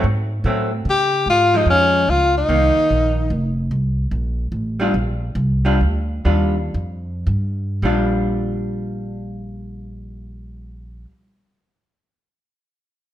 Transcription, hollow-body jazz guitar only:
0.46 F#3 A3 C4
1.54 F3 G#3
2.49 D#3 A#3
4.80 G3 D4 F4
5.65 G3 D4 F4
6.25 G3 D4 F4
7.83 G3 D4 F4

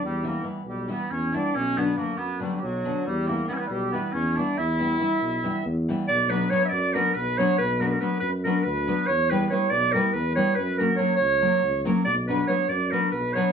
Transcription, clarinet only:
0.05 G3
0.28 A#3
0.68 G3
0.92 B3
1.11 C#4
1.35 D4
1.55 C#4
1.78 B3
1.98 A#3
2.18 B3
2.41 G3
2.55 G3
2.61 F#3
3.06 G3
3.28 A#3
3.48 B3
3.54 C#4
3.58 B3
3.67 G3
3.91 B3
4.13 C#4
4.36 D4
4.58 E4
6.08 D5
6.30 B4
6.50 C#5
6.65 D5 E5
6.94 A#4
7.14 B4
7.38 C#5
7.58 B4
7.80 A#4
7.86 B4
7.91 A#4
8.01 B4
8.20 B4
8.44 A#4
8.63 B4
9.06 C#5
9.30 B4
9.50 C#5
9.69 D5
9.92 A#4
10.13 B4
10.35 C#5
10.55 B4
10.78 A#4
10.96 C#5
11.16 C#5
12.05 D5
12.27 B4
12.47 C#5
12.69 D5
12.91 A#4
13.11 B4
13.34 C#5

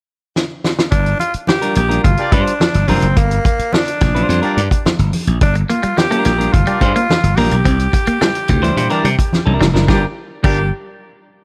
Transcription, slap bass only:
0.92 G1
1.34 muted slap bass stroke
1.76 A#1
2.04 G1
2.32 G2
2.75 G1
2.89 F1
3.02 F#1
3.17 G1
3.59 muted slap bass stroke
4.01 A#1
4.29 F2
4.57 G2
4.86 muted slap bass stroke
4.99 G1
5.27 A#1
5.41 G1
5.83 muted slap bass stroke
6.26 A#1
6.54 G1
6.81 G2
7.23 G1
7.37 A#1
7.51 B1
7.65 C2
8.07 muted slap bass stroke
8.49 D2
8.77 A#2
9.05 C3
9.46 C2
9.60 F1
9.74 F#1
9.89 G1
10.44 G1

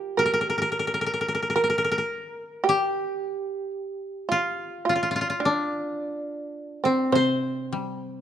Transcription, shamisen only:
Already playing: G4
0.17 A#4
0.65 B4
0.78 A#4
0.92 B4
1.05 A#4
1.56 A#4
2.64 G4
4.29 F4
4.85 F4
5.21 D4
5.40 D4
6.12 C#4
6.29 C4
6.84 C4
7.12 C5

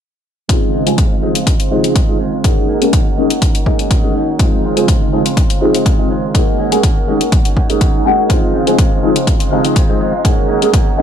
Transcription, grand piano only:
0.49 F3 G#3 C4 D#4
0.86 F3 G#3 C4 G#4
1.22 F3 G#3 C4 D#4
1.71 F3 G#3 C4 D#4
2.08 F3 G#3 C4 D#4
2.44 G#3 A#3 C#4 D#4
2.81 G#3 A#3 C#4 G#4
3.17 G#3 A#3 C#4 D#4
3.66 G#3 A#3 C#4 D#4
4.03 G#3 A#3 C#4 D#4
4.39 F3 G#3 C4 D#4
4.76 F3 G#3 C4 G#4
5.12 F3 G#3 C4 D#4
5.61 F3 G#3 C4 D#4
5.98 F3 G#3 C4 D#4
6.34 G#3 A#3 C#4 D#4
6.72 G#3 A#3 C#4 G#4
7.07 G#3 A#3 C#4 D#4
7.69 G#3 A#3 C#4 D#4
8.05 G#3 A#3 C#4 F#4
8.29 F3 G#3 C4 D#4
8.67 F3 G#3 C4 G#4
9.03 F3 G#3 C4 D#4
9.51 F3 G#3 C4 D#4
9.89 F3 G#3 C4 D#4
10.25 G#3 A#3 C#4 D#4
10.62 G#3 A#3 C#4 G#4
10.98 G#3 A#3 C#4 D#4

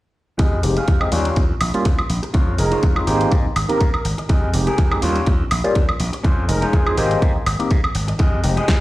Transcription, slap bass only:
0.39 F2
0.64 F1
0.77 muted slap bass stroke
0.88 F2
1.13 D#2
1.37 D#2
1.61 A#1
1.86 D#2
2.10 A#1
2.35 F2
2.59 F1
2.72 muted slap bass stroke
2.83 F2
3.07 G#1
3.32 G#2
3.45 muted slap bass stroke
3.56 G#1
3.69 muted slap bass stroke
3.81 G#2
4.05 G#1
4.30 F2
4.54 F1
4.67 muted slap bass stroke
4.79 F2
5.03 D#2
5.27 D#2
5.52 A#1
5.65 muted slap bass stroke
5.76 D#2
6.00 A#1
6.25 F2
6.49 F1
6.62 muted slap bass stroke
6.73 F2
6.98 G#1
7.22 G#2
7.36 muted slap bass stroke
7.46 G#1
7.60 muted slap bass stroke
7.71 G#2
7.95 G#1
8.20 F2
8.44 F1
8.57 muted slap bass stroke
8.69 F2

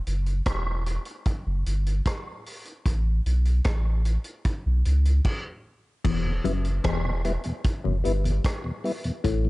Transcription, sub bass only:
0.07 F#1
0.47 E1
1.47 F#1
1.67 G1
2.86 A1
3.26 B1
3.66 A1
4.66 B1
4.86 C#2
6.05 E1
6.46 F#1
6.85 E1
7.86 F#1
8.06 G1
9.25 A1

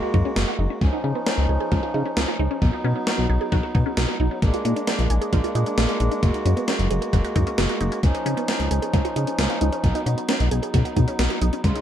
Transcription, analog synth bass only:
0.14 F#2
0.36 F#1
0.59 F#1
0.81 C#2
1.04 C#3
1.38 C#2
1.49 C#2
1.72 C#2
1.94 C#3
2.17 C#2
2.39 C#2
2.62 B1
2.84 B2
3.18 B1
3.29 B1
3.52 B1
3.75 B2
3.97 B1
4.20 B1
4.42 A#1
4.65 A#2
4.99 A#1
5.10 A#1
5.33 A#1
5.55 A#2
5.78 A#1
6.00 A#1
6.23 F#1
6.45 F#2
6.79 F#1
6.91 F#1
7.13 F#1
7.36 F#2
7.58 F#1
7.81 F#1
8.03 C#2
8.26 C#3
8.60 C#2
8.71 C#2
8.94 C#2
9.16 C#3
9.39 C#2
9.61 C#2
9.84 B1
10.06 B2
10.40 B1
10.51 B1
10.74 B1
10.97 B2
11.19 B1
11.41 B1
11.64 C#2

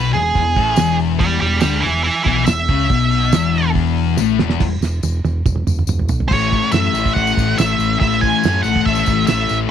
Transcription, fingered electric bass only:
Already playing: B1
0.13 E1
0.36 E1
0.57 A1
0.79 E1
1.21 E1
1.42 E1
1.62 D2
1.83 E1
2.26 B1
2.47 E1
2.69 C#2
2.91 B1
3.33 E1
4.18 A1
4.40 E1
4.62 E1
4.81 E1
5.03 E1
5.24 E1
5.46 E1
5.67 E1
5.87 E1
6.09 B1
6.31 A1
6.73 F#2
6.94 A1
7.16 A1
7.38 A1
7.59 A1
7.79 A1
8.01 A1
8.45 F#2
8.65 A1
8.86 A1
9.08 A1
9.30 A1
9.51 A1

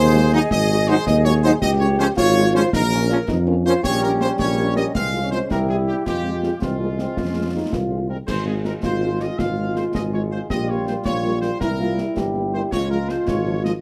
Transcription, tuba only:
Already playing: D#2
0.51 G#1
1.06 D#2
1.62 C#2
2.17 G#1
2.73 A#1
3.28 F2
3.83 A#1
4.39 A#1
4.95 C2
5.50 C2
6.06 F2
6.61 C2
7.17 F2
7.72 C2
8.28 G#1
8.83 G#1
9.38 G#1
9.94 G#1
10.49 A#1
11.05 A#1
11.61 C2
12.17 G1
12.72 C#2
13.27 G#1

